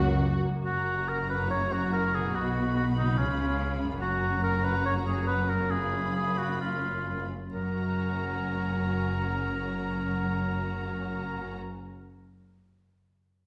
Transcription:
Already playing: C#2 F#2 C#3 F#3 F#4 C#5
0.02 A#3
0.23 F#4
0.45 F#2 A#3
0.53 A#3
0.57 F#4
0.62 F#4 C#5
0.67 F#1 F#2 F#4 A#5
1.09 A#4
1.30 F#2 B4
1.38 A#3
1.42 F#4
1.46 E4 E5
1.51 C#5
1.73 F#4
1.93 A#4
2.15 B2 G#4
2.22 B3
2.26 F#4
2.34 B1 B2 D#4 F#4 B5
2.77 F#4
2.97 C#3 D#4
3.05 B3
3.09 F4
3.14 C#5
3.18 C#2 C#3 C#4 F4
3.83 F#2
3.88 A#3
3.92 F#4
3.96 F#1 C#5
4.01 F#2 F#4 A#5
4.43 A#4
4.64 B4
4.86 C#5
5.07 G#4
5.27 B4
5.49 A#4
5.54 F#2
5.58 B3
5.62 F4
5.67 C#4 G#4 C#5
5.72 F4 B5
6.16 G#4
6.38 F#4
6.61 F4
7.54 F#1 F#2 C#4 F#4 A#4 A#5
7.61 F#3
7.67 C#4
7.75 F#4
7.82 C#5
7.89 F#5

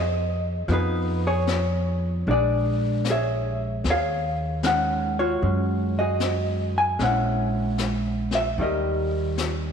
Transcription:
Already playing: F2 F3 G#4 C5 D#5
0.68 F2 F3 B3 D#4, brush sweep, snare
0.73 G#4 B4
1.27 G#4 C#5
1.47 snare, hi-hat pedal
2.27 A#1 G#3 D4, brush sweep
2.31 G#4 D5
3.05 snare, hi-hat pedal
3.10 G#4 C#5 E5
3.84 D#2, brush sweep, snare
3.90 G#4 C#5 F5
4.63 D#3 G#3 C#4 F#5, snare, hi-hat pedal
5.19 F4 F#4 C#5
5.41 F#2 G#3 C#4, brush sweep
5.99 F#4 G#4 D#5
6.20 snare, hi-hat pedal
6.78 G#5
6.99 A#1 G#3 C#4 C#5, brush sweep, snare
7.03 E4 F#5
7.78 snare, hi-hat pedal
8.31 snare
8.35 E5
8.58 D#2 D#3 G3 C#4 E4, brush sweep
8.62 G4 A#4 D#5
9.38 snare, hi-hat pedal

